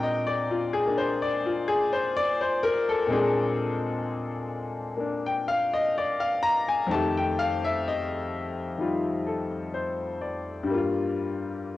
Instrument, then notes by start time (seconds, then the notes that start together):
grand piano
Already playing: A#2 G#3 C4 D4 G5 A#5
0.03 D#5
0.27 D5
0.51 F4
0.73 G#4
0.87 A#3 D4
0.97 C5
1.22 D5
1.46 F4
1.68 G#4
1.93 C5
2.17 D5
2.41 C5
2.63 A#4
2.89 A4
3.07 A#2 G#3 C4
3.12 D4 G#4
4.97 A#3 D4
5.26 G5
5.48 F5
5.73 D#5
5.98 D5
6.20 F5
6.42 A#5
6.68 G#5
6.87 F2 D#3 A3
6.91 G4 A5
7.17 G5
7.39 F5
7.64 E5
7.88 D#5
8.77 D#3 G3 F4
9.27 A4
9.74 C5
10.21 D5
10.63 G2 G3
10.71 A#3 F4